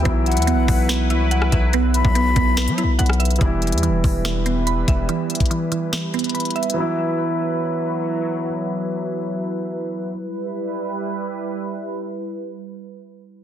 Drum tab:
HH |x-----------x--x--x--x--x-----------o-----------x-----------x-----------x-----------x-----------|x-----------x-----------x-----------x-----------x-----x-----x-----------x---x---x---x--x--x--x--|x-----------x--x--x--x--x-----------o-----------x-----------x-----------x-----------x-----------|x-----------x--x--x--x--x-----------x-----------x-----------x--x--x--x--x--x--x--x--x---x---x---|
SD |------------------------------------------------o-----------------------------r-----------------|------------------------------------------------o-----------------------------r-----------------|------------------------------------------------o-----------------------------------------------|------------------------------------------------o-----------------------------------------------|
BD |o-----------------------------------o-----------------------------------------------o-----------|------------------o-----------------o-----------------------------------------------------------|o-----------------------------------o-----------------------------------------------o-----------|------------------o-----------------------------------------------------------------------------|

HH |------------------------------------------------------------------------------------------------|------------------------------------------------------------------------------------------------|------------------------------------------------------------------------------------------------|------------------------------------------------------------------------------------------------|
SD |------------------------------------------------------------------------------------------------|------------------------------------------------------------------------------------------------|------------------------------------------------------------------------------------------------|------------------------------------------------------------------------------------------------|
BD |------------------------------------------------------------------------------------------------|------------------------------------------------------------------------------------------------|------------------------------------------------------------------------------------------------|------------------------------------------------------------------------------------------------|